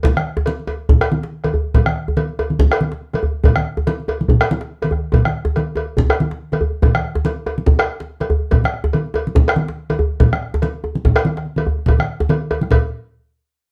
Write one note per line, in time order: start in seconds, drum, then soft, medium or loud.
0.03 bombo low loud
0.03 cowbell medium
0.03 djembe tone medium
0.03 low conga medium
0.17 bombo rim medium
0.17 high conga medium
0.27 bombo rim soft
0.37 djembe slap medium
0.37 djembe tone medium
0.37 djembe bass medium
0.46 cowbell medium
0.46 high conga medium
0.60 high conga soft
0.67 cowbell soft
0.67 djembe tone medium
0.89 bombo low loud
0.89 high conga soft
0.89 djembe bass medium
0.89 low conga medium
1.01 bombo rim medium
1.01 cowbell medium
1.01 djembe tone medium
1.12 high conga medium
1.23 djembe slap medium
1.23 high conga soft
1.44 bombo rim soft
1.44 cowbell soft
1.44 djembe tone medium
1.44 high conga medium
1.53 high conga soft
1.53 djembe bass medium
1.74 bombo low loud
1.74 cowbell medium
1.74 djembe tone medium
1.74 low conga medium
1.86 bombo rim medium
1.86 djembe slap soft
1.86 high conga medium
1.96 bombo rim soft
2.08 djembe tone medium
2.08 djembe bass medium
2.17 cowbell medium
2.17 high conga medium
2.29 high conga soft
2.39 cowbell soft
2.39 djembe tone medium
2.50 high conga medium
2.59 bombo low medium
2.59 high conga soft
2.59 djembe bass medium
2.59 low conga medium
2.71 bombo rim medium
2.71 cowbell medium
2.71 djembe tone medium
2.81 high conga medium
2.92 djembe slap medium
2.92 high conga soft
3.14 bombo rim soft
3.14 cowbell medium
3.14 djembe tone medium
3.14 high conga medium
3.23 high conga soft
3.23 djembe bass medium
3.44 bombo low loud
3.44 cowbell medium
3.44 djembe tone medium
3.44 low conga medium
3.56 bombo rim medium
3.56 djembe slap soft
3.56 high conga medium
3.65 bombo rim soft
3.77 djembe slap medium
3.77 djembe tone medium
3.77 djembe bass medium
3.87 cowbell medium
3.87 high conga medium
4.00 high conga soft
4.08 cowbell soft
4.08 djembe tone medium
4.21 high conga medium
4.28 bombo low loud
4.28 high conga soft
4.28 djembe bass medium
4.28 low conga medium
4.41 bombo rim loud
4.41 cowbell medium
4.41 djembe tone medium
4.41 high conga soft
4.51 high conga loud
4.61 djembe slap medium
4.82 cowbell medium
4.82 djembe tone medium
4.82 high conga medium
4.91 bombo rim soft
4.91 djembe bass medium
5.12 bombo low loud
5.12 cowbell medium
5.12 djembe tone medium
5.12 low conga medium
5.25 bombo rim medium
5.25 high conga medium
5.33 djembe slap soft
5.45 djembe slap medium
5.45 djembe tone medium
5.45 djembe bass medium
5.56 bombo rim soft
5.56 cowbell soft
5.56 high conga medium
5.76 cowbell soft
5.76 djembe slap soft
5.76 djembe tone medium
5.97 bombo low loud
5.97 high conga soft
5.97 djembe bass medium
5.97 low conga medium
6.09 bombo rim medium
6.09 cowbell medium
6.09 djembe tone medium
6.20 high conga medium
6.31 djembe slap medium
6.31 high conga soft
6.52 bombo rim soft
6.52 cowbell soft
6.52 djembe tone medium
6.52 high conga medium
6.61 high conga soft
6.61 djembe bass medium
6.82 bombo low loud
6.82 cowbell soft
6.82 djembe tone medium
6.82 low conga medium
6.94 bombo rim medium
6.94 djembe slap soft
6.94 high conga medium
7.04 bombo rim soft
7.15 djembe slap medium
7.15 djembe tone medium
7.15 djembe bass medium
7.25 cowbell medium
7.25 high conga medium
7.36 high conga soft
7.46 cowbell soft
7.46 djembe tone medium
7.58 high conga medium
7.66 bombo low loud
7.66 high conga soft
7.66 low conga medium
7.66 djembe bass medium
7.79 bombo rim loud
7.79 cowbell medium
7.79 djembe tone medium
8.00 djembe slap medium
8.00 high conga soft
8.20 bombo rim soft
8.20 cowbell medium
8.20 djembe tone medium
8.20 high conga medium
8.30 high conga soft
8.30 djembe bass medium
8.51 bombo low loud
8.51 cowbell medium
8.51 djembe tone medium
8.51 low conga medium
8.64 bombo rim medium
8.64 high conga medium
8.74 bombo rim soft
8.84 djembe slap medium
8.84 djembe tone medium
8.84 djembe bass medium
8.93 cowbell soft
8.93 high conga medium
9.06 high conga soft
9.14 cowbell soft
9.14 djembe tone medium
9.27 high conga medium
9.35 bombo low loud
9.35 high conga soft
9.35 djembe bass medium
9.35 low conga medium
9.48 bombo rim loud
9.48 cowbell medium
9.48 djembe tone medium
9.56 high conga medium
9.68 djembe slap medium
9.68 high conga soft
9.90 bombo rim soft
9.90 cowbell medium
9.90 high conga medium
9.90 djembe tone medium
9.99 high conga soft
9.99 djembe bass loud
10.20 bombo low loud
10.20 cowbell soft
10.20 djembe tone medium
10.20 low conga medium
10.32 bombo rim medium
10.32 djembe slap soft
10.32 high conga medium
10.42 bombo rim soft
10.54 djembe slap medium
10.54 djembe tone medium
10.54 djembe bass medium
10.62 cowbell soft
10.62 high conga medium
10.74 high conga soft
10.84 djembe tone medium
10.95 high conga medium
11.05 bombo rim soft
11.05 bombo low medium
11.05 high conga soft
11.05 djembe bass medium
11.05 low conga medium
11.16 bombo rim medium
11.16 cowbell medium
11.16 djembe tone medium
11.25 bombo rim soft
11.25 high conga medium
11.37 bombo rim soft
11.37 djembe slap medium
11.46 high conga soft
11.56 cowbell medium
11.56 djembe slap soft
11.56 high conga medium
11.56 djembe tone medium
11.66 djembe slap soft
11.66 high conga soft
11.66 djembe bass medium
11.79 djembe slap soft
11.86 bombo low loud
11.86 cowbell medium
11.86 djembe slap soft
11.86 high conga soft
11.86 djembe tone medium
11.86 low conga medium
11.99 bombo rim medium
11.99 high conga medium
12.20 djembe slap medium
12.20 djembe tone medium
12.20 djembe bass medium
12.29 cowbell medium
12.29 djembe slap soft
12.29 high conga loud
12.42 djembe slap soft
12.51 cowbell medium
12.51 djembe tone medium
12.61 bombo rim soft
12.61 high conga medium
12.71 bombo low medium
12.71 cowbell medium
12.71 low conga medium
12.71 djembe bass medium